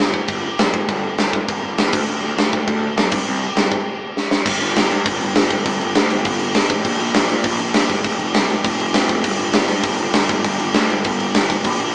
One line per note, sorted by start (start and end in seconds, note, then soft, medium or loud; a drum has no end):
0.00 0.16 G1 medium
0.00 snare loud
0.14 kick medium
0.28 0.47 G1 medium
0.28 kick medium
0.28 crash medium
0.59 0.68 B1 medium
0.59 snare loud
0.59 crash medium
0.73 0.82 G1 medium
0.73 kick medium
0.88 1.06 G1 loud
0.88 kick loud
0.88 crash medium
1.18 1.37 G1 medium
1.18 snare loud
1.18 crash medium
1.33 kick medium
1.48 1.57 E1 medium
1.48 kick loud
1.48 crash medium
1.63 1.72 G1 medium
1.78 1.93 E2 medium
1.78 snare loud
1.78 crash medium
1.92 2.02 D2 medium
1.92 kick loud
1.92 crash loud
2.08 2.18 D2 loud
2.08 crash medium
2.23 2.32 D2 medium
2.37 2.56 D2 loud
2.37 snare loud
2.37 crash medium
2.53 kick medium
2.67 2.85 D2 loud
2.67 kick loud
2.67 crash medium
2.96 3.06 B1 loud
2.96 snare loud
2.96 crash medium
3.11 3.21 C2 medium
3.11 kick loud
3.11 crash loud
3.27 3.45 C2 loud
3.27 crash medium
3.56 3.74 C2 medium
3.56 snare loud
3.56 crash medium
3.72 kick medium
4.17 snare medium
4.31 snare loud
4.46 4.60 G1 loud
4.46 kick loud
4.46 crash loud
4.61 4.76 G1 loud
4.61 crash medium
4.76 4.90 G1 loud
4.76 snare loud
4.76 crash medium
4.90 5.05 G2 loud
4.90 crash medium
5.06 5.20 G1 medium
5.06 kick loud
5.06 crash medium
5.21 5.35 G1 loud
5.21 crash medium
5.35 5.50 G1 loud
5.35 snare loud
5.35 crash medium
5.50 5.64 G1 loud
5.50 kick medium
5.50 crash medium
5.65 5.79 G1 loud
5.65 kick loud
5.65 crash medium
5.80 5.95 G1 loud
5.80 crash medium
5.95 6.10 D2 loud
5.95 snare loud
5.95 crash medium
6.10 6.25 G1 loud
6.10 crash medium
6.25 6.54 G1 loud
6.25 kick loud
6.25 crash medium
6.39 crash medium
6.54 6.69 G1 medium
6.54 snare loud
6.54 crash medium
6.69 6.84 A1 medium
6.69 kick loud
6.69 crash medium
6.85 6.99 A#1 loud
6.85 kick loud
6.85 crash medium
6.99 7.14 A#1 loud
6.99 crash medium
7.14 7.29 A#1 loud
7.14 snare loud
7.14 crash medium
7.29 7.44 A#2 loud
7.29 crash medium
7.44 7.59 A#1 loud
7.44 kick loud
7.44 crash loud
7.59 7.75 A#1 loud
7.59 crash medium
7.74 7.89 A#1 loud
7.74 snare loud
7.74 crash medium
7.90 8.04 G1 medium
7.90 kick medium
7.90 crash medium
8.04 8.19 F1 loud
8.04 kick loud
8.04 crash medium
8.19 8.34 F1 loud
8.19 crash medium
8.34 8.49 C2 medium
8.34 snare loud
8.34 crash medium
8.50 8.64 F1 loud
8.50 crash medium
8.64 8.93 F1 loud
8.64 kick loud
8.64 crash medium
8.80 crash medium
8.94 9.09 F1 medium
8.94 snare loud
8.94 crash medium
9.09 9.24 F1 medium
9.09 kick medium
9.09 crash medium
9.24 9.39 G1 loud
9.24 kick loud
9.24 crash loud
9.39 9.53 G1 loud
9.39 crash medium
9.53 9.68 G1 medium
9.53 snare loud
9.53 crash medium
9.68 9.82 G2 loud
9.68 crash medium
9.83 9.98 G1 loud
9.83 kick loud
9.83 crash loud
9.98 10.13 G1 loud
9.98 crash medium
10.13 10.29 G1 loud
10.13 snare loud
10.13 crash loud
10.29 10.43 G1 medium
10.29 kick medium
10.29 crash medium
10.44 10.58 G1 loud
10.44 kick loud
10.44 crash medium
10.59 10.74 G1 medium
10.59 crash medium
10.74 10.88 D2 loud
10.74 snare loud
10.74 crash medium
10.89 11.04 G1 medium
10.89 crash medium
11.04 11.33 G1 loud
11.04 kick loud
11.04 crash medium
11.20 crash medium
11.34 11.49 G1 medium
11.34 snare loud
11.34 crash medium
11.50 11.64 G1 loud
11.50 kick loud
11.50 crash medium
11.64 11.79 A#1 loud
11.64 kick loud
11.64 crash medium
11.80 11.94 A#1 loud
11.80 crash medium